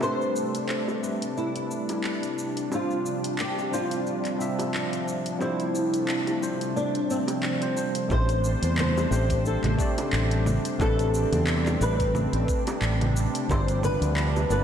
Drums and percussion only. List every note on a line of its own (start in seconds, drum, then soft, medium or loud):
0.01 high bongo medium
0.01 shaker soft
0.21 shaker soft
0.36 shaker medium
0.55 closed hi-hat medium
0.55 shaker soft
0.69 clap medium
0.69 shaker soft
0.88 high bongo medium
0.88 shaker soft
1.04 shaker medium
1.22 closed hi-hat soft
1.22 shaker soft
1.37 shaker soft
1.56 closed hi-hat soft
1.56 shaker soft
1.71 shaker medium
1.89 closed hi-hat soft
1.89 high bongo medium
1.89 shaker soft
2.04 clap medium
2.04 shaker soft
2.23 closed hi-hat soft
2.23 shaker soft
2.38 shaker medium
2.57 closed hi-hat soft
2.57 shaker soft
2.72 high bongo medium
2.72 shaker soft
2.91 shaker soft
3.06 shaker medium
3.24 closed hi-hat medium
3.24 shaker soft
3.39 clap medium
3.39 shaker soft
3.58 high bongo medium
3.58 shaker soft
3.74 shaker medium
3.91 closed hi-hat medium
3.91 shaker soft
4.07 shaker soft
4.25 clap soft
4.25 closed hi-hat soft
4.25 shaker soft
4.41 shaker medium
4.59 closed hi-hat soft
4.59 high bongo medium
4.59 shaker soft
4.74 clap medium
4.74 shaker soft
4.93 closed hi-hat soft
4.93 shaker soft
5.08 shaker medium
5.26 closed hi-hat medium
5.26 shaker soft
5.41 high bongo medium
5.41 shaker soft
5.60 closed hi-hat soft
5.60 shaker soft
5.75 shaker medium
5.94 closed hi-hat medium
5.94 shaker soft
6.08 clap medium
6.08 shaker soft
6.27 closed hi-hat soft
6.27 high bongo medium
6.27 shaker soft
6.43 shaker medium
6.61 closed hi-hat medium
6.61 shaker soft
6.77 shaker soft
6.95 closed hi-hat soft
6.95 shaker soft
7.10 shaker medium
7.28 closed hi-hat medium
7.28 high bongo medium
7.28 shaker soft
7.43 clap medium
7.43 shaker soft
7.62 closed hi-hat soft
7.62 shaker soft
7.77 shaker medium
7.95 closed hi-hat medium
7.95 shaker soft
8.10 kick loud
8.10 high bongo medium
8.10 shaker soft
8.29 closed hi-hat soft
8.29 shaker soft
8.44 shaker medium
8.63 closed hi-hat medium
8.63 shaker soft
8.78 clap loud
8.78 low conga medium
8.78 shaker soft
8.97 high bongo medium
8.97 shaker soft
9.12 shaker medium
9.30 kick loud
9.30 closed hi-hat medium
9.30 shaker soft
9.46 shaker soft
9.64 clap soft
9.64 closed hi-hat soft
9.64 low conga medium
9.79 kick loud
9.79 shaker medium
9.98 closed hi-hat medium
9.98 high bongo medium
9.98 shaker soft
10.13 clap loud
10.13 shaker soft
10.31 closed hi-hat soft
10.46 low conga medium
10.46 shaker medium
10.65 closed hi-hat medium
10.65 shaker soft
10.80 kick loud
10.80 high bongo medium
10.80 shaker soft
10.99 closed hi-hat soft
10.99 shaker soft
11.14 shaker medium
11.33 closed hi-hat medium
11.33 low conga medium
11.33 shaker soft
11.47 clap loud
11.47 shaker soft
11.66 clap soft
11.66 high bongo medium
11.66 shaker soft
11.81 shaker medium
12.00 kick loud
12.00 closed hi-hat medium
12.00 shaker soft
12.15 low conga medium
12.15 shaker soft
12.33 closed hi-hat soft
12.48 kick loud
12.48 shaker medium
12.67 closed hi-hat medium
12.67 high bongo medium
12.67 shaker soft
12.82 clap loud
12.82 shaker soft
13.01 closed hi-hat soft
13.01 low conga medium
13.16 shaker medium
13.35 closed hi-hat medium
13.35 shaker soft
13.49 kick loud
13.49 high bongo loud
13.49 shaker soft
13.68 closed hi-hat soft
13.68 shaker soft
13.83 low conga medium
13.83 shaker medium
14.02 closed hi-hat medium
14.02 shaker soft
14.17 clap loud
14.17 shaker soft
14.36 high bongo medium
14.36 shaker soft
14.50 shaker medium